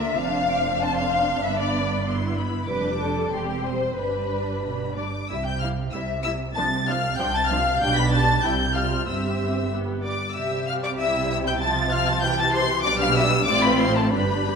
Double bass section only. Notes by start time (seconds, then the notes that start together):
Already playing: D2
0.20 F1
1.44 G1
2.69 F1
3.33 E1
3.99 G1
5.29 C2
5.94 C2
6.57 C2
7.20 C2
7.82 B1
8.44 C2
9.08 G1
10.37 C2
12.85 B1
13.49 A1
14.15 G1